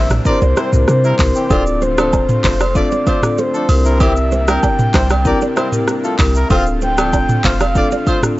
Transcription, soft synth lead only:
0.27 C5
0.89 C5
1.52 D5
1.83 C5
2.76 D5
3.08 D5
3.39 C5
4.01 E5
4.49 G5
6.52 F5
6.83 G5
7.45 F5

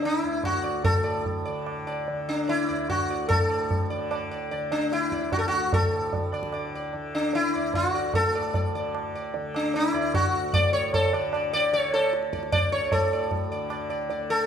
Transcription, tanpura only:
Already playing: D2 A2 D3
0.23 D2
0.86 A2
1.47 D3
2.08 D3
2.69 D2
3.31 A2
3.92 D3
4.52 D3
5.13 D2
5.74 A2
6.33 D3
6.94 D3
7.55 D2
8.13 A2
8.74 D3
9.35 D3
9.93 D2
10.52 A2
11.12 D3
11.72 D3
12.32 D2
12.91 A2
13.51 D3
14.09 D3

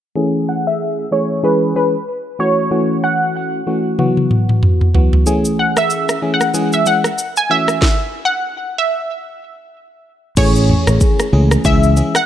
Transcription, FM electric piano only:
0.16 E3 A3 C#4 G#4
1.11 E3 A3 C#4 G#4
1.43 E3 G#3 C#4 G#4
1.75 E3 G#3 C#4 G#4
2.39 E3 A3 C#4 F#4
2.71 E3 A3 C#4 F#4
3.67 E3 A3 C#4 F#4
3.98 E3 F#3 B3 F#4
4.94 E3 F#3 B3 F#4
5.26 E3 A3 C#4 G#4
6.22 E3 A3 C#4 G#4
6.54 E3 G#3 C#4 G#4
6.86 E3 G#3 C#4 G#4
7.50 E3 A3 C#4 F#4
10.37 E3 A3 C#4 G#4
11.33 E3 A3 C#4 G#4
11.65 E3 G#3 C#4 G#4
11.96 E3 G#3 C#4 G#4

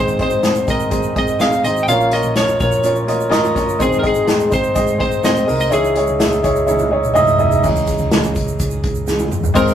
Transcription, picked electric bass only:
Already playing: G#1
0.32 G#1
0.68 G#1
0.92 G#1
1.64 G#1
1.88 A#1
2.24 A#1
2.60 A#1
3.32 G#1
3.56 G1
3.80 G#1
4.16 G#1
4.52 G#1
4.76 G#1
5.48 C2
5.72 C#2
6.08 C#2
6.44 C#2
7.15 C2
7.40 C2
7.64 C#2
7.99 C#2
8.36 C#2
8.60 C#2
9.31 G1
9.55 G#1

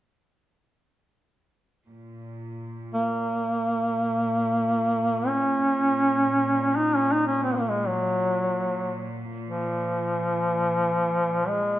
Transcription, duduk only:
2.94 A#3
5.28 C#4
6.76 D#4
6.96 C#4
7.12 D#4
7.28 C#4
7.43 C4
7.55 A#3
7.70 G#3
7.87 F#3
9.46 F3
11.47 G#3

